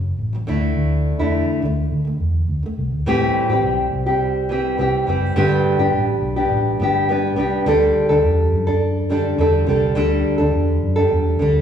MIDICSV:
0, 0, Header, 1, 3, 480
1, 0, Start_track
1, 0, Tempo, 575264
1, 639, Time_signature, 4, 2, 24, 8
1, 9692, End_track
2, 0, Start_track
2, 0, Title_t, "Nylon-string guitar"
2, 0, Program_c, 0, 24
2, 274, Note_on_c, 0, 42, 47
2, 289, Note_on_c, 0, 49, 55
2, 297, Note_on_c, 0, 54, 51
2, 388, Note_off_c, 0, 54, 0
2, 392, Note_on_c, 0, 50, 74
2, 397, Note_off_c, 0, 42, 0
2, 401, Note_on_c, 0, 57, 80
2, 402, Note_on_c, 0, 62, 74
2, 404, Note_off_c, 0, 49, 0
2, 407, Note_on_c, 0, 64, 75
2, 991, Note_off_c, 0, 62, 0
2, 992, Note_off_c, 0, 64, 0
2, 996, Note_off_c, 0, 50, 0
2, 996, Note_on_c, 0, 64, 68
2, 1001, Note_off_c, 0, 57, 0
2, 1001, Note_on_c, 0, 62, 65
2, 1005, Note_on_c, 0, 57, 64
2, 1011, Note_on_c, 0, 50, 62
2, 1342, Note_off_c, 0, 50, 0
2, 1352, Note_on_c, 0, 50, 52
2, 1358, Note_off_c, 0, 64, 0
2, 1360, Note_off_c, 0, 62, 0
2, 1362, Note_off_c, 0, 57, 0
2, 1380, Note_on_c, 0, 57, 59
2, 1548, Note_off_c, 0, 50, 0
2, 1562, Note_off_c, 0, 57, 0
2, 1708, Note_on_c, 0, 50, 44
2, 1729, Note_on_c, 0, 57, 44
2, 1906, Note_off_c, 0, 50, 0
2, 1917, Note_off_c, 0, 57, 0
2, 2193, Note_on_c, 0, 50, 45
2, 2219, Note_on_c, 0, 57, 53
2, 2388, Note_off_c, 0, 50, 0
2, 2401, Note_off_c, 0, 57, 0
2, 2555, Note_on_c, 0, 45, 75
2, 2560, Note_on_c, 0, 52, 90
2, 2565, Note_on_c, 0, 55, 79
2, 2567, Note_on_c, 0, 60, 93
2, 2575, Note_on_c, 0, 67, 99
2, 2907, Note_off_c, 0, 67, 0
2, 2917, Note_off_c, 0, 45, 0
2, 2917, Note_on_c, 0, 67, 59
2, 2920, Note_off_c, 0, 52, 0
2, 2922, Note_off_c, 0, 55, 0
2, 2924, Note_off_c, 0, 60, 0
2, 2932, Note_on_c, 0, 60, 50
2, 2944, Note_on_c, 0, 55, 47
2, 3387, Note_off_c, 0, 67, 0
2, 3391, Note_on_c, 0, 67, 60
2, 3396, Note_off_c, 0, 60, 0
2, 3406, Note_on_c, 0, 60, 47
2, 3414, Note_off_c, 0, 55, 0
2, 3417, Note_on_c, 0, 55, 47
2, 3746, Note_off_c, 0, 55, 0
2, 3747, Note_on_c, 0, 52, 61
2, 3755, Note_off_c, 0, 67, 0
2, 3756, Note_on_c, 0, 55, 63
2, 3758, Note_off_c, 0, 60, 0
2, 3768, Note_on_c, 0, 60, 65
2, 3769, Note_on_c, 0, 67, 69
2, 3978, Note_off_c, 0, 52, 0
2, 3987, Note_off_c, 0, 55, 0
2, 3988, Note_on_c, 0, 52, 58
2, 3991, Note_off_c, 0, 60, 0
2, 3997, Note_on_c, 0, 55, 60
2, 4001, Note_on_c, 0, 60, 61
2, 4002, Note_off_c, 0, 67, 0
2, 4012, Note_on_c, 0, 67, 69
2, 4217, Note_off_c, 0, 52, 0
2, 4227, Note_off_c, 0, 55, 0
2, 4227, Note_on_c, 0, 52, 60
2, 4236, Note_off_c, 0, 60, 0
2, 4237, Note_on_c, 0, 55, 59
2, 4243, Note_off_c, 0, 67, 0
2, 4246, Note_on_c, 0, 60, 67
2, 4253, Note_on_c, 0, 67, 61
2, 4466, Note_off_c, 0, 55, 0
2, 4471, Note_on_c, 0, 50, 89
2, 4472, Note_off_c, 0, 52, 0
2, 4472, Note_on_c, 0, 43, 84
2, 4476, Note_off_c, 0, 67, 0
2, 4476, Note_on_c, 0, 55, 87
2, 4477, Note_off_c, 0, 60, 0
2, 4478, Note_on_c, 0, 59, 94
2, 4481, Note_on_c, 0, 62, 85
2, 4486, Note_on_c, 0, 67, 86
2, 4823, Note_off_c, 0, 67, 0
2, 4831, Note_off_c, 0, 62, 0
2, 4833, Note_on_c, 0, 67, 60
2, 4835, Note_off_c, 0, 50, 0
2, 4836, Note_off_c, 0, 43, 0
2, 4837, Note_off_c, 0, 55, 0
2, 4839, Note_off_c, 0, 59, 0
2, 4841, Note_on_c, 0, 62, 55
2, 4850, Note_on_c, 0, 59, 49
2, 4852, Note_on_c, 0, 55, 47
2, 5306, Note_off_c, 0, 67, 0
2, 5309, Note_on_c, 0, 67, 57
2, 5312, Note_off_c, 0, 59, 0
2, 5312, Note_off_c, 0, 62, 0
2, 5316, Note_on_c, 0, 62, 56
2, 5322, Note_on_c, 0, 59, 48
2, 5328, Note_off_c, 0, 55, 0
2, 5331, Note_on_c, 0, 55, 44
2, 5661, Note_off_c, 0, 55, 0
2, 5671, Note_on_c, 0, 55, 57
2, 5674, Note_off_c, 0, 67, 0
2, 5675, Note_off_c, 0, 59, 0
2, 5677, Note_off_c, 0, 62, 0
2, 5685, Note_on_c, 0, 59, 60
2, 5689, Note_on_c, 0, 62, 64
2, 5699, Note_on_c, 0, 67, 77
2, 5904, Note_off_c, 0, 55, 0
2, 5914, Note_on_c, 0, 55, 58
2, 5915, Note_off_c, 0, 59, 0
2, 5924, Note_off_c, 0, 62, 0
2, 5925, Note_on_c, 0, 59, 62
2, 5927, Note_off_c, 0, 67, 0
2, 5934, Note_on_c, 0, 62, 59
2, 5937, Note_on_c, 0, 67, 59
2, 6133, Note_off_c, 0, 55, 0
2, 6141, Note_off_c, 0, 59, 0
2, 6143, Note_on_c, 0, 55, 68
2, 6151, Note_off_c, 0, 62, 0
2, 6151, Note_on_c, 0, 59, 65
2, 6160, Note_off_c, 0, 67, 0
2, 6161, Note_on_c, 0, 62, 63
2, 6170, Note_on_c, 0, 67, 72
2, 6388, Note_off_c, 0, 55, 0
2, 6393, Note_off_c, 0, 62, 0
2, 6393, Note_on_c, 0, 50, 89
2, 6395, Note_off_c, 0, 59, 0
2, 6398, Note_on_c, 0, 55, 85
2, 6403, Note_on_c, 0, 62, 89
2, 6404, Note_off_c, 0, 67, 0
2, 6412, Note_on_c, 0, 69, 87
2, 6741, Note_off_c, 0, 69, 0
2, 6751, Note_on_c, 0, 69, 61
2, 6756, Note_off_c, 0, 50, 0
2, 6756, Note_off_c, 0, 62, 0
2, 6758, Note_off_c, 0, 55, 0
2, 6766, Note_on_c, 0, 62, 52
2, 6772, Note_on_c, 0, 55, 49
2, 7223, Note_off_c, 0, 69, 0
2, 7233, Note_off_c, 0, 62, 0
2, 7233, Note_on_c, 0, 69, 65
2, 7243, Note_on_c, 0, 62, 54
2, 7258, Note_off_c, 0, 55, 0
2, 7589, Note_on_c, 0, 50, 58
2, 7594, Note_off_c, 0, 62, 0
2, 7595, Note_on_c, 0, 55, 72
2, 7596, Note_off_c, 0, 69, 0
2, 7604, Note_on_c, 0, 62, 74
2, 7609, Note_on_c, 0, 69, 76
2, 7818, Note_off_c, 0, 50, 0
2, 7827, Note_off_c, 0, 55, 0
2, 7829, Note_on_c, 0, 50, 58
2, 7837, Note_off_c, 0, 62, 0
2, 7837, Note_on_c, 0, 55, 62
2, 7839, Note_off_c, 0, 69, 0
2, 7847, Note_on_c, 0, 62, 69
2, 7849, Note_on_c, 0, 69, 68
2, 8054, Note_off_c, 0, 50, 0
2, 8064, Note_on_c, 0, 50, 67
2, 8071, Note_off_c, 0, 55, 0
2, 8076, Note_off_c, 0, 62, 0
2, 8081, Note_on_c, 0, 55, 66
2, 8084, Note_off_c, 0, 69, 0
2, 8086, Note_on_c, 0, 62, 73
2, 8093, Note_on_c, 0, 69, 74
2, 8293, Note_off_c, 0, 50, 0
2, 8300, Note_off_c, 0, 55, 0
2, 8303, Note_on_c, 0, 50, 89
2, 8307, Note_off_c, 0, 62, 0
2, 8310, Note_on_c, 0, 55, 96
2, 8311, Note_off_c, 0, 69, 0
2, 8317, Note_on_c, 0, 62, 93
2, 8321, Note_on_c, 0, 69, 94
2, 8650, Note_off_c, 0, 69, 0
2, 8660, Note_on_c, 0, 69, 63
2, 8664, Note_off_c, 0, 62, 0
2, 8671, Note_off_c, 0, 50, 0
2, 8674, Note_off_c, 0, 55, 0
2, 8674, Note_on_c, 0, 62, 56
2, 8683, Note_on_c, 0, 55, 48
2, 9133, Note_off_c, 0, 69, 0
2, 9143, Note_on_c, 0, 69, 70
2, 9150, Note_off_c, 0, 62, 0
2, 9160, Note_on_c, 0, 62, 52
2, 9166, Note_off_c, 0, 55, 0
2, 9169, Note_on_c, 0, 55, 52
2, 9504, Note_off_c, 0, 55, 0
2, 9505, Note_on_c, 0, 50, 63
2, 9511, Note_off_c, 0, 69, 0
2, 9514, Note_on_c, 0, 55, 63
2, 9516, Note_off_c, 0, 62, 0
2, 9526, Note_on_c, 0, 62, 76
2, 9529, Note_on_c, 0, 69, 77
2, 9692, Note_off_c, 0, 50, 0
2, 9692, Note_off_c, 0, 55, 0
2, 9692, Note_off_c, 0, 62, 0
2, 9692, Note_off_c, 0, 69, 0
2, 9692, End_track
3, 0, Start_track
3, 0, Title_t, "Fingered electric bass"
3, 0, Program_c, 1, 33
3, 0, Note_on_c, 1, 30, 71
3, 112, Note_off_c, 1, 30, 0
3, 155, Note_on_c, 1, 33, 85
3, 353, Note_off_c, 1, 33, 0
3, 402, Note_on_c, 1, 38, 86
3, 598, Note_off_c, 1, 38, 0
3, 632, Note_on_c, 1, 38, 83
3, 931, Note_off_c, 1, 38, 0
3, 998, Note_on_c, 1, 40, 64
3, 1196, Note_off_c, 1, 40, 0
3, 1358, Note_on_c, 1, 38, 76
3, 1556, Note_off_c, 1, 38, 0
3, 1599, Note_on_c, 1, 50, 80
3, 1796, Note_off_c, 1, 50, 0
3, 1836, Note_on_c, 1, 40, 73
3, 2034, Note_off_c, 1, 40, 0
3, 2071, Note_on_c, 1, 38, 74
3, 2173, Note_off_c, 1, 38, 0
3, 2318, Note_on_c, 1, 36, 73
3, 2417, Note_off_c, 1, 36, 0
3, 2435, Note_on_c, 1, 38, 69
3, 2536, Note_off_c, 1, 38, 0
3, 2551, Note_on_c, 1, 33, 80
3, 2751, Note_off_c, 1, 33, 0
3, 2911, Note_on_c, 1, 33, 80
3, 3013, Note_off_c, 1, 33, 0
3, 3036, Note_on_c, 1, 35, 82
3, 3234, Note_off_c, 1, 35, 0
3, 3273, Note_on_c, 1, 36, 78
3, 3963, Note_off_c, 1, 36, 0
3, 3993, Note_on_c, 1, 36, 76
3, 4192, Note_off_c, 1, 36, 0
3, 4234, Note_on_c, 1, 30, 77
3, 4433, Note_off_c, 1, 30, 0
3, 4471, Note_on_c, 1, 31, 86
3, 4671, Note_off_c, 1, 31, 0
3, 4826, Note_on_c, 1, 31, 75
3, 4930, Note_off_c, 1, 31, 0
3, 4949, Note_on_c, 1, 33, 77
3, 5150, Note_off_c, 1, 33, 0
3, 5187, Note_on_c, 1, 35, 82
3, 5388, Note_off_c, 1, 35, 0
3, 5425, Note_on_c, 1, 33, 82
3, 5628, Note_off_c, 1, 33, 0
3, 5667, Note_on_c, 1, 31, 81
3, 6150, Note_off_c, 1, 31, 0
3, 6150, Note_on_c, 1, 36, 81
3, 6350, Note_off_c, 1, 36, 0
3, 6391, Note_on_c, 1, 38, 89
3, 6591, Note_off_c, 1, 38, 0
3, 6752, Note_on_c, 1, 38, 74
3, 6853, Note_off_c, 1, 38, 0
3, 6869, Note_on_c, 1, 40, 95
3, 7070, Note_off_c, 1, 40, 0
3, 7110, Note_on_c, 1, 42, 86
3, 7801, Note_off_c, 1, 42, 0
3, 7829, Note_on_c, 1, 40, 93
3, 8030, Note_off_c, 1, 40, 0
3, 8072, Note_on_c, 1, 36, 82
3, 8272, Note_off_c, 1, 36, 0
3, 8311, Note_on_c, 1, 38, 94
3, 8511, Note_off_c, 1, 38, 0
3, 8678, Note_on_c, 1, 38, 78
3, 8776, Note_off_c, 1, 38, 0
3, 8803, Note_on_c, 1, 40, 82
3, 8998, Note_off_c, 1, 40, 0
3, 9039, Note_on_c, 1, 42, 79
3, 9236, Note_off_c, 1, 42, 0
3, 9279, Note_on_c, 1, 40, 79
3, 9475, Note_off_c, 1, 40, 0
3, 9522, Note_on_c, 1, 38, 86
3, 9692, Note_off_c, 1, 38, 0
3, 9692, End_track
0, 0, End_of_file